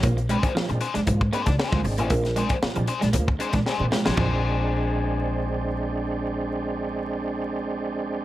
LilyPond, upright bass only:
\new Staff \with { instrumentName = "Upright bass" } { \clef bass \time 4/4 \key bes \mixolydian \tempo 4 = 116 bes,,8. r8 bes,16 r16 f,16 aes,8 r16 des,16 r16 d,16 aes,,16 a,,16 | bes,,8. r8 bes,16 r16 bes,,16 d,8 r16 bes,,16 r16 bes,16 r16 a,,16 | bes,,1~ | bes,,1 | }